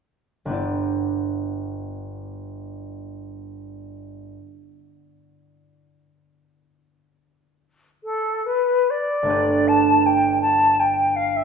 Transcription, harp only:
0.45 4.35 G1 soft
0.45 4.36 G3 soft
0.45 4.38 B3 soft
0.51 4.41 E4 soft
0.51 4.43 D5 soft
9.23 11.44 G1 soft
9.23 11.44 A3 soft
9.23 11.44 D4 soft
9.28 11.44 G4 soft
9.28 11.44 B4 soft

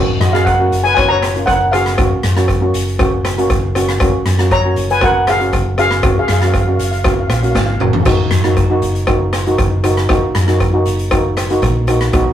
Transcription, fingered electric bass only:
0.20 0.68 F#2 loud
0.71 1.43 F#1 medium
1.47 1.95 F#1 loud
1.98 2.10 F#1 loud
2.24 2.71 F#2 medium
2.74 3.46 F#1 medium
3.50 3.98 F#1 loud
4.00 4.13 F#1 loud
4.26 4.74 F#2 loud
4.76 5.49 F#1 loud
5.53 6.01 F#1 loud
6.03 6.16 F#1 loud
6.29 6.77 F#2 loud
6.79 7.27 F#1 medium
7.29 7.53 A#1 medium
7.55 7.78 G#1 medium
7.80 8.03 F#1 medium
8.06 8.19 F#1 medium
8.31 8.79 F#2 loud
8.82 9.55 F#1 loud
9.59 10.07 F#1 loud
10.09 10.22 F#1 medium
10.35 10.83 F#2 loud
10.86 11.58 F#1 medium
11.62 12.10 A#1 loud
12.13 12.26 B1 medium

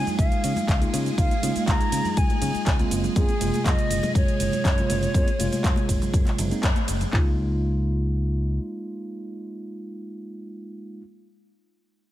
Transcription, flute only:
0.00 0.18 G#5 loud
0.19 0.89 F5 loud
1.18 1.64 F5 loud
1.67 2.19 A#5 loud
2.18 2.92 G#5 loud
3.17 3.68 G#4 loud
3.66 4.15 D#5 loud
4.16 6.60 C#5 loud

